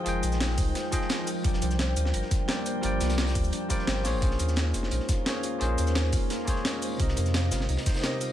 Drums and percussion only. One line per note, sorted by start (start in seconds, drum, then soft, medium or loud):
0.06 closed hi-hat medium
0.23 closed hi-hat medium
0.23 shaker medium
0.32 snare medium
0.32 shaker soft
0.40 snare loud
0.40 closed hi-hat medium
0.50 snare medium
0.58 kick loud
0.58 closed hi-hat medium
0.58 open hi-hat medium
0.58 shaker medium
0.75 snare loud
0.75 closed hi-hat medium
0.84 snare soft
0.92 kick medium
0.92 snare soft
0.92 closed hi-hat medium
0.92 closed hi-hat loud
0.92 shaker medium
1.01 snare soft
1.09 snare loud
1.09 closed hi-hat loud
1.09 closed hi-hat medium
1.20 snare soft
1.27 closed hi-hat medium
1.27 open hi-hat medium
1.27 shaker medium
1.45 kick loud
1.45 closed hi-hat medium
1.45 closed hi-hat loud
1.53 snare medium
1.62 closed hi-hat medium
1.62 shaker medium
1.71 snare soft
1.71 shaker soft
1.79 snare loud
1.79 closed hi-hat medium
1.79 closed hi-hat loud
1.89 snare soft
1.97 closed hi-hat loud
1.97 closed hi-hat medium
1.97 shaker medium
2.05 snare soft
2.14 closed hi-hat medium
2.22 snare soft
2.31 kick loud
2.31 snare medium
2.31 closed hi-hat loud
2.31 closed hi-hat medium
2.31 shaker medium
2.48 snare loud
2.48 closed hi-hat medium
2.57 snare soft
2.66 closed hi-hat medium
2.66 shaker medium
2.83 closed hi-hat medium
3.00 snare loud
3.00 closed hi-hat medium
3.00 shaker medium
3.09 snare loud
3.09 closed hi-hat medium
3.09 shaker soft
3.18 snare loud
3.18 closed hi-hat medium
3.27 snare loud
3.27 closed hi-hat medium
3.35 kick loud
3.35 open hi-hat medium
3.35 shaker medium
3.44 shaker soft
3.52 closed hi-hat medium
3.70 kick medium
3.70 snare soft
3.70 closed hi-hat medium
3.70 shaker medium
3.79 snare soft
3.87 snare loud
3.87 closed hi-hat medium
3.97 snare soft
4.05 snare soft
4.05 closed hi-hat medium
4.05 open hi-hat medium
4.05 shaker medium
4.22 kick loud
4.22 closed hi-hat medium
4.31 snare medium
4.40 closed hi-hat medium
4.40 shaker medium
4.48 snare soft
4.48 shaker soft
4.56 snare loud
4.56 closed hi-hat medium
4.65 snare soft
4.74 closed hi-hat medium
4.74 shaker medium
4.83 snare soft
4.91 closed hi-hat medium
5.00 snare soft
5.09 kick loud
5.09 snare medium
5.09 closed hi-hat medium
5.09 shaker medium
5.26 snare loud
5.26 closed hi-hat medium
5.35 snare soft
5.43 closed hi-hat medium
5.43 shaker medium
5.61 closed hi-hat medium
5.78 closed hi-hat medium
5.78 shaker medium
5.87 snare medium
5.87 shaker soft
5.95 snare loud
5.95 closed hi-hat medium
6.04 snare medium
6.13 kick loud
6.13 closed hi-hat medium
6.13 open hi-hat medium
6.13 shaker medium
6.30 snare loud
6.30 closed hi-hat medium
6.47 kick medium
6.47 snare soft
6.47 closed hi-hat medium
6.47 shaker medium
6.56 snare soft
6.65 snare loud
6.65 closed hi-hat medium
6.73 snare soft
6.82 closed hi-hat medium
6.82 open hi-hat medium
6.82 shaker medium
7.00 kick loud
7.00 closed hi-hat medium
7.08 snare medium
7.17 closed hi-hat medium
7.17 shaker medium
7.26 snare soft
7.26 shaker soft
7.34 snare loud
7.34 closed hi-hat medium
7.43 snare soft
7.51 snare medium
7.51 closed hi-hat medium
7.51 shaker medium
7.60 snare soft
7.69 closed hi-hat medium
7.69 open hi-hat medium
7.77 snare loud
7.77 closed hi-hat medium
7.86 kick loud
7.86 snare loud
7.86 closed hi-hat medium
7.86 shaker medium
7.94 snare medium
7.94 closed hi-hat medium
7.99 snare medium
7.99 closed hi-hat medium
8.03 snare loud
8.03 closed hi-hat medium
8.12 snare soft
8.21 closed hi-hat medium
8.21 open hi-hat medium
8.21 shaker medium